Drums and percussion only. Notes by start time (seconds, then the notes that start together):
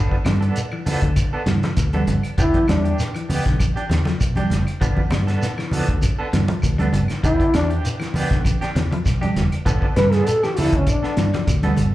0.12 kick
0.25 snare, closed hi-hat, high conga, claves, shekere
0.42 closed hi-hat
0.56 closed hi-hat, shekere
0.72 claves
0.86 open hi-hat, high conga, low conga, shekere
1.02 kick, closed hi-hat
1.16 kick, closed hi-hat, claves, shekere
1.46 snare, closed hi-hat, low conga, shekere
1.63 snare, closed hi-hat, high conga
1.77 kick, snare, closed hi-hat, claves, shekere
1.93 closed hi-hat, high conga
2.07 closed hi-hat, high conga, low conga, shekere
2.23 closed hi-hat, claves
2.38 kick, closed hi-hat, shekere
2.54 kick, closed hi-hat, high conga
2.68 snare, closed hi-hat, high conga, claves, shekere
2.85 closed hi-hat
2.99 snare, closed hi-hat, shekere
3.15 closed hi-hat, claves
3.30 open hi-hat, high conga, low conga, shekere
3.46 kick, snare, closed hi-hat
3.60 kick, closed hi-hat, high conga, claves, shekere
3.77 closed hi-hat
3.89 snare, closed hi-hat, low conga, shekere
4.05 snare, closed hi-hat, high conga
4.21 kick, closed hi-hat, claves, shekere
4.36 closed hi-hat, high conga
4.50 snare, closed hi-hat, low conga, shekere
4.67 closed hi-hat, claves
4.82 kick, closed hi-hat, shekere
4.97 kick, high conga
5.10 snare, closed hi-hat, high conga, claves, shekere
5.28 snare, closed hi-hat
5.42 snare, closed hi-hat, shekere
5.58 snare, claves
5.71 open hi-hat, high conga, low conga, shekere
5.88 kick, closed hi-hat
6.01 kick, closed hi-hat, high conga, claves, shekere
6.33 snare, closed hi-hat, low conga, shekere
6.48 closed hi-hat, high conga
6.62 kick, closed hi-hat, claves, shekere
6.79 closed hi-hat, high conga
6.93 closed hi-hat, high conga, low conga, shekere
7.08 snare, closed hi-hat, claves
7.24 kick, closed hi-hat, shekere
7.40 kick, closed hi-hat
7.54 snare, closed hi-hat, high conga, claves, shekere
7.70 closed hi-hat
7.85 closed hi-hat, shekere
8.00 snare, closed hi-hat, claves
8.14 open hi-hat, high conga, low conga, shekere
8.31 kick, snare, closed hi-hat
8.45 kick, closed hi-hat, high conga, claves, shekere
8.62 snare, closed hi-hat
8.76 snare, closed hi-hat, low conga, shekere
8.92 closed hi-hat, high conga
9.06 kick, snare, closed hi-hat, claves, shekere
9.23 closed hi-hat, high conga
9.36 snare, closed hi-hat, high conga, low conga, shekere
9.52 closed hi-hat, claves
9.66 kick, closed hi-hat, shekere
9.82 kick
9.96 snare, closed hi-hat, high conga, low conga, claves, shekere
10.12 snare, closed hi-hat
10.27 closed hi-hat, shekere
10.43 snare, claves
10.57 open hi-hat, high conga, low conga, shekere
10.72 kick, closed hi-hat
10.87 kick, closed hi-hat, claves, shekere
11.04 snare
11.17 snare, closed hi-hat, shekere
11.34 snare, closed hi-hat, high conga
11.48 kick, snare, closed hi-hat, claves, shekere
11.63 closed hi-hat, high conga
11.77 closed hi-hat, low conga, shekere